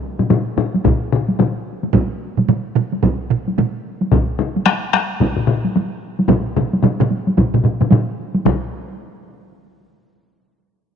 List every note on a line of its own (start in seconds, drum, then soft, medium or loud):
0.19 taiko low-mid medium
0.19 taiko high medium
0.30 taiko low-mid loud
0.30 taiko high medium
0.58 taiko low-mid loud
0.58 taiko high soft
0.74 taiko high medium
0.85 taiko medium
0.85 taiko low-mid medium
0.85 taiko high medium
1.12 taiko low-mid loud
1.28 taiko high medium
1.40 taiko low-mid medium
1.40 taiko high medium
1.83 taiko high medium
1.94 taiko medium
1.94 taiko mid loud
1.94 taiko high medium
2.37 taiko mid medium
2.37 taiko high medium
2.49 taiko mid medium
2.49 taiko high medium
2.75 taiko mid medium
2.75 taiko high soft
2.93 taiko high medium
3.03 taiko medium
3.03 taiko mid medium
3.03 taiko high medium
3.30 taiko mid medium
3.48 taiko high soft
3.58 taiko mid medium
3.58 taiko high medium
4.01 taiko high medium
4.12 taiko loud
4.12 taiko low-mid medium
4.12 taiko high medium
4.39 taiko low-mid loud
4.57 taiko high medium
4.66 taiko rim medium
4.66 taiko high medium
4.93 taiko rim medium
4.93 taiko high soft
5.20 taiko medium
5.20 taiko low-mid medium
5.20 taiko high medium
5.37 taiko low-mid medium
5.47 taiko low-mid medium
5.64 taiko high medium
5.76 taiko high medium
6.19 taiko high medium
6.29 taiko loud
6.29 taiko low-mid medium
6.29 taiko mid loud
6.29 taiko high medium
6.57 taiko low-mid medium
6.57 taiko mid medium
6.73 taiko high medium
6.83 taiko low-mid medium
6.83 taiko mid medium
6.83 taiko high medium
7.00 taiko low-mid medium
7.00 taiko mid loud
7.11 taiko high medium
7.27 taiko high medium
7.38 taiko medium
7.38 taiko low-mid medium
7.38 taiko mid medium
7.38 taiko high medium
7.54 taiko low-mid medium
7.54 taiko mid medium
7.65 taiko low-mid medium
7.65 taiko mid medium
7.81 taiko low-mid medium
7.81 taiko mid medium
7.81 taiko high medium
7.91 taiko low-mid medium
7.91 taiko mid loud
7.91 taiko high medium
8.35 taiko high medium
8.45 taiko medium
8.45 taiko low-mid loud
8.45 taiko mid loud
8.45 taiko high medium